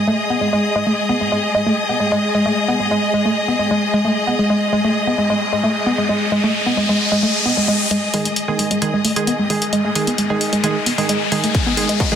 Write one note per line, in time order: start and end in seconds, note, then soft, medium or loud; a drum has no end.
0.00 12.15 G#3 medium
0.00 12.15 G#4 medium
0.00 12.15 D#5 medium
0.00 12.15 D#6 medium
0.07 0.14 A3 medium
0.30 0.37 B3 medium
0.41 0.52 G#3 medium
0.53 0.59 G#3 medium
0.76 0.82 G#3 loud
0.87 0.94 A3 medium
1.09 1.16 B3 medium
1.21 1.31 G#3 medium
1.32 1.39 G#3 loud
1.55 1.62 G#3 loud
1.66 1.73 A3 medium
1.89 1.96 B3 medium
2.00 2.11 G#3 medium
2.12 2.18 G#3 loud
2.35 2.41 G#3 medium
2.46 2.53 A3 medium
2.68 2.75 B3 medium
2.80 2.90 G#3 medium
2.91 2.98 G#3 loud
3.14 3.21 G#3 loud
3.25 3.32 A3 medium
3.48 3.55 B3 medium
3.59 3.70 G#3 medium
3.71 3.78 G#3 loud
3.94 4.00 G#3 loud
4.05 4.12 A3 medium
4.27 4.34 B3 medium
4.27 riser medium
4.39 4.49 G#3 medium
4.50 4.57 G#3 loud
4.73 4.80 G#3 loud
4.84 4.91 A3 medium
5.07 5.14 B3 medium
5.18 5.29 G#3 medium
5.30 5.37 G#3 loud
5.53 5.59 G#3 loud
5.64 5.71 A3 medium
5.86 5.94 B3 medium
5.98 6.08 G#3 medium
6.09 6.16 G#3 loud
6.32 6.39 G#3 loud
6.44 6.50 A3 medium
6.66 6.73 B3 medium
6.77 6.88 G#3 medium
6.89 6.96 G#3 loud
7.12 7.18 G#3 loud
7.23 7.30 A3 medium
7.46 7.53 B3 medium
7.57 7.67 G#3 medium
7.68 7.75 G#3 loud
7.91 7.98 G#3 loud
7.91 closed hi-hat medium
7.91 riser medium
8.14 8.26 D#3 medium
8.14 8.26 G#3 medium
8.14 8.21 G#3 loud
8.14 8.26 G#4 medium
8.14 open hi-hat loud
8.25 8.32 A3 medium
8.25 closed hi-hat medium
8.36 closed hi-hat medium
8.48 8.79 D#3 loud
8.48 8.79 G#3 medium
8.48 8.55 B3 medium
8.48 8.79 G#4 loud
8.59 8.70 G#3 medium
8.59 open hi-hat loud
8.71 8.78 G#3 loud
8.71 closed hi-hat medium
8.82 8.94 D#3 medium
8.82 8.94 G#3 medium
8.82 8.94 G#4 loud
8.82 closed hi-hat medium
8.94 9.00 G#3 loud
9.05 9.12 A3 medium
9.05 open hi-hat loud
9.16 9.35 D#3 medium
9.16 9.35 G#3 medium
9.16 9.35 G#4 loud
9.16 closed hi-hat medium
9.27 9.34 B3 medium
9.27 closed hi-hat medium
9.39 9.49 G#3 medium
9.50 9.62 D#3 medium
9.50 9.62 G#3 medium
9.50 9.57 G#3 loud
9.50 9.62 G#4 loud
9.50 open hi-hat loud
9.62 closed hi-hat medium
9.73 9.80 G#3 loud
9.73 closed hi-hat medium
9.85 9.91 A3 medium
9.95 10.08 D#3 medium
9.95 10.08 G#3 medium
9.95 10.08 G#4 medium
9.95 open hi-hat loud
10.07 10.14 B3 medium
10.07 closed hi-hat medium
10.18 10.29 G#3 medium
10.18 closed hi-hat medium
10.30 10.61 D#3 loud
10.30 10.61 G#3 medium
10.30 10.37 G#3 loud
10.30 10.61 G#4 loud
10.41 open hi-hat loud
10.53 10.59 G#3 medium
10.53 closed hi-hat medium
10.64 10.76 D#3 medium
10.64 10.76 G#3 medium
10.64 10.71 A3 medium
10.64 10.76 G#4 medium
10.64 closed hi-hat medium
10.86 10.94 B3 medium
10.86 open hi-hat loud
10.98 11.17 D#3 medium
10.98 11.17 G#3 medium
10.98 11.08 G#3 medium
10.98 11.17 G#4 loud
10.98 open hi-hat medium
11.09 11.16 G#3 loud
11.09 closed hi-hat medium
11.32 11.44 D#3 loud
11.32 11.44 G#3 medium
11.32 11.39 G#3 loud
11.32 11.44 G#4 loud
11.32 open hi-hat loud
11.44 11.50 A3 medium
11.44 closed hi-hat medium
11.55 kick loud
11.55 closed hi-hat medium
11.66 11.73 B3 medium
11.77 11.89 D#3 medium
11.77 11.88 G#3 medium
11.77 11.89 G#3 medium
11.77 11.89 G#4 medium
11.77 open hi-hat loud
11.89 11.96 G#3 loud
11.89 closed hi-hat medium
12.00 kick loud
12.00 closed hi-hat medium
12.12 12.15 D#3 loud
12.12 12.15 G#3 medium
12.12 12.15 G#3 loud
12.12 12.15 G#4 loud